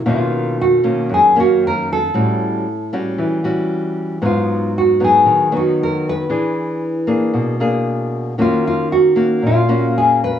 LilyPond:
<<
  \new Staff \with { instrumentName = "Nylon-string guitar" } { \time 4/4 \key ees \minor \tempo 4 = 115 f'4 fis'4 aes'8 fis'8 ais'8 a'8~ | a'4. r2 r8 | f'4 ges'8 aes'4 ges'8 bes'8 ces''8~ | ces''4. r2 r8 |
f'8 f'8 ges'4 f'4 aes'8 ces''8 | }
  \new Staff \with { instrumentName = "Nylon-string guitar" } { \time 4/4 \key ees \minor << { <dis ais cis'>4. <dis ais cis'>4 <dis ais cis'>4. | <g cis' fis'>4 r8 <g cis' fis'>4 <g cis' fis'>4. | <ges ces' ees'>4. <ges ces' ees'>4 <ges ces' ees'>4. | <d' gis'>4. <ais d' gis'>4 <ais d' gis'>4. |
<bes des' ges'>4. <bes des' ges'>4 <bes des' ges'>4. | } \\ { b,2 fis,2 | a,2 e2 | aes,2 ees2 | e2 b,2 |
ees2 bes,2 | } >> }
>>